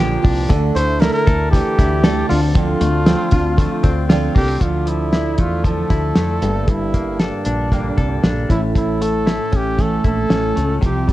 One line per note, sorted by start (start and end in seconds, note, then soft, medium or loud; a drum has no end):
0.00 0.16 A#1 medium
0.00 0.23 A#2 medium
0.00 0.49 A#2 medium
0.00 0.23 D3 medium
0.00 0.23 F3 medium
0.00 0.54 F3 medium
0.00 0.23 A#3 medium
0.00 0.54 A#3 medium
0.00 0.23 D4 medium
0.00 0.22 F4 medium
0.00 0.21 G4 medium
0.00 0.55 G4 medium
0.22 0.46 C2 medium
0.22 0.48 F3 soft
0.22 0.49 A#3 medium
0.22 1.01 D4 medium
0.22 0.49 F4 medium
0.22 0.49 G4 medium
0.22 kick loud
0.22 open hi-hat medium
0.48 0.72 D2 loud
0.48 0.75 D3 medium
0.48 2.29 D3 medium
0.48 0.75 A3 medium
0.48 0.75 D4 loud
0.48 0.74 E4 medium
0.48 0.74 A4 loud
0.48 kick loud
0.48 closed hi-hat loud
0.75 1.08 D2 medium
0.75 2.81 A3 medium
0.75 0.99 D4 soft
0.75 0.98 E4 soft
0.75 0.99 A4 medium
0.75 1.02 C5 loud
0.75 closed hi-hat medium
0.99 1.26 D3 medium
0.99 1.26 A3 medium
0.99 1.26 D4 medium
0.99 1.26 E4 medium
0.99 1.77 E4 medium
0.99 1.25 A4 medium
0.99 1.13 A#4 loud
0.99 snare medium
0.99 closed hi-hat medium
1.13 1.49 A#4 loud
1.27 1.60 D2 loud
1.27 1.52 D4 soft
1.27 1.52 E4 medium
1.27 1.52 A4 medium
1.27 2.04 A4 medium
1.27 kick loud
1.27 closed hi-hat medium
1.51 2.35 E3 medium
1.51 1.78 A3 medium
1.51 1.78 D4 medium
1.51 1.78 E4 medium
1.51 2.25 G4 medium
1.51 1.77 A4 medium
1.51 kick medium
1.51 closed hi-hat medium
1.78 2.22 D2 medium
1.78 2.03 D4 soft
1.78 2.35 E4 medium
1.78 2.03 E4 soft
1.78 2.04 A4 medium
1.78 kick medium
1.78 closed hi-hat medium
2.04 2.30 D3 medium
2.04 2.30 A3 medium
2.04 2.30 D4 medium
2.04 2.30 E4 medium
2.04 4.38 A4 medium
2.04 2.28 A4 medium
2.04 snare loud
2.04 closed hi-hat medium
2.29 2.74 D2 loud
2.29 2.54 D3 medium
2.29 2.54 C4 soft
2.29 2.55 D4 soft
2.29 2.40 F4 medium
2.29 2.55 A4 medium
2.29 open hi-hat medium
2.55 4.60 D3 medium
2.55 2.81 D3 medium
2.55 2.81 F3 medium
2.55 2.81 C4 medium
2.55 2.81 D4 medium
2.55 4.06 F4 medium
2.55 2.80 A4 medium
2.55 kick loud
2.55 closed hi-hat loud
2.81 3.14 D2 loud
2.81 3.57 A3 medium
2.81 3.05 C4 soft
2.81 3.06 D4 soft
2.81 3.07 A4 medium
2.81 closed hi-hat medium
3.06 3.32 D3 medium
3.06 3.32 F3 medium
3.06 3.82 C4 medium
3.06 3.31 C4 medium
3.06 3.31 D4 medium
3.06 3.29 A4 medium
3.06 snare loud
3.06 closed hi-hat medium
3.31 3.65 D2 loud
3.31 3.57 C4 medium
3.31 3.57 D4 medium
3.31 4.09 F4 medium
3.31 3.57 A4 medium
3.31 kick medium
3.31 closed hi-hat medium
3.57 3.84 F3 medium
3.57 4.86 A3 medium
3.57 3.84 C4 medium
3.57 3.83 D4 medium
3.57 3.83 A4 medium
3.57 kick medium
3.57 closed hi-hat medium
3.83 4.28 D2 medium
3.83 4.34 C4 medium
3.83 4.10 C4 soft
3.83 4.10 D4 medium
3.83 4.10 A4 medium
3.83 kick medium
3.83 closed hi-hat medium
4.09 4.36 D3 medium
4.09 4.36 F3 medium
4.09 4.36 C4 medium
4.09 4.35 D4 medium
4.09 4.66 F4 medium
4.09 4.34 A4 loud
4.09 snare loud
4.09 closed hi-hat medium
4.35 4.58 C2 medium
4.35 4.48 A#3 medium
4.35 4.62 C4 soft
4.35 4.61 D4 medium
4.35 4.62 G4 loud
4.35 4.61 A4 medium
4.35 kick medium
4.35 open hi-hat medium
4.48 4.66 C4 medium
4.60 5.35 D2 medium
4.60 8.10 D3 medium
4.60 5.66 D3 medium
4.60 5.65 F3 medium
4.60 5.66 D4 medium
4.60 5.65 E4 medium
4.60 4.89 F4 medium
4.60 5.66 A4 medium
4.60 kick medium
4.60 closed hi-hat medium
4.86 5.63 F3 soft
4.86 5.42 E4 medium
4.86 closed hi-hat medium
5.13 5.89 E4 soft
5.13 snare medium
5.13 closed hi-hat medium
5.38 5.83 E2 medium
5.38 6.16 A3 soft
5.38 5.65 F4 medium
5.38 kick medium
5.38 closed hi-hat medium
5.64 6.43 D3 medium
5.64 6.47 F3 medium
5.64 6.43 F3 medium
5.64 6.42 D4 medium
5.64 6.42 E4 medium
5.64 6.71 A4 medium
5.64 6.41 A4 medium
5.64 kick medium
5.64 closed hi-hat medium
5.90 6.12 D2 medium
5.90 6.47 E4 medium
5.90 kick medium
5.90 closed hi-hat medium
6.15 6.38 F2 medium
6.15 6.72 A3 medium
6.15 snare medium
6.15 closed hi-hat medium
6.42 7.30 G1 medium
6.42 6.67 G2 medium
6.42 7.71 G2 soft
6.42 7.71 D3 medium
6.42 7.72 G3 medium
6.42 7.72 A#3 medium
6.42 7.72 G4 medium
6.42 7.73 A4 medium
6.42 closed hi-hat medium
6.68 8.49 G2 medium
6.68 7.21 E4 medium
6.68 kick loud
6.68 closed hi-hat medium
6.94 7.71 A#3 soft
6.94 kick medium
6.94 closed hi-hat medium
7.19 8.21 D4 medium
7.19 7.97 A4 medium
7.19 snare medium
7.19 closed hi-hat medium
7.45 7.90 A#1 medium
7.45 8.22 D4 soft
7.45 closed hi-hat medium
7.72 8.50 G2 medium
7.72 8.50 D3 medium
7.72 8.50 G3 medium
7.72 8.55 A#3 medium
7.72 8.50 A#3 medium
7.72 8.50 G4 medium
7.72 8.50 A4 medium
7.72 kick medium
7.72 closed hi-hat medium
7.98 8.20 C2 medium
7.98 11.11 A4 medium
7.98 kick medium
7.98 closed hi-hat soft
8.23 8.46 A#1 medium
8.23 8.55 D4 medium
8.23 snare loud
8.23 closed hi-hat medium
8.49 9.38 A1 medium
8.49 8.74 A2 medium
8.49 9.28 A2 soft
8.49 9.28 E3 medium
8.49 9.26 A3 soft
8.49 9.28 C#4 soft
8.49 8.61 E4 medium
8.49 9.28 E4 medium
8.49 9.28 A4 medium
8.49 kick medium
8.49 closed hi-hat medium
8.75 10.83 A2 medium
8.75 9.04 E4 medium
8.75 kick medium
8.75 closed hi-hat medium
9.02 9.77 A3 soft
9.02 9.58 A4 medium
9.02 closed hi-hat medium
9.27 9.78 A3 soft
9.27 9.79 C#4 medium
9.27 10.03 E4 medium
9.27 9.78 E4 soft
9.27 9.80 A4 medium
9.27 snare medium
9.27 closed hi-hat medium
9.52 9.97 A1 medium
9.52 10.29 C#4 soft
9.52 kick medium
9.52 closed hi-hat medium
9.56 9.83 G4 medium
9.78 10.57 A2 medium
9.78 10.57 E3 medium
9.78 10.55 A3 medium
9.78 10.57 A3 medium
9.78 10.56 C#4 medium
9.78 10.56 E4 medium
9.78 10.55 A4 medium
9.78 10.06 A4 medium
9.78 kick medium
9.78 closed hi-hat medium
10.04 10.27 A#1 medium
10.04 10.88 E4 medium
10.04 10.80 A4 medium
10.04 kick medium
10.04 closed hi-hat soft
10.30 10.53 A1 medium
10.30 10.87 C#4 medium
10.30 snare loud
10.30 closed hi-hat medium
10.56 10.79 C#2 medium
10.56 10.88 A3 medium
10.56 10.81 A3 soft
10.56 10.82 C#4 soft
10.56 10.82 E4 soft
10.56 10.82 A4 soft
10.56 closed hi-hat medium
10.81 11.13 C2 medium
10.81 11.13 C3 medium
10.81 11.13 F3 medium
10.81 11.13 C4 medium
10.81 11.13 F4 medium
10.81 11.13 G4 medium
10.81 kick medium
10.81 closed hi-hat medium
10.85 11.08 G4 medium
11.08 11.13 G3 medium
11.08 kick medium
11.08 closed hi-hat medium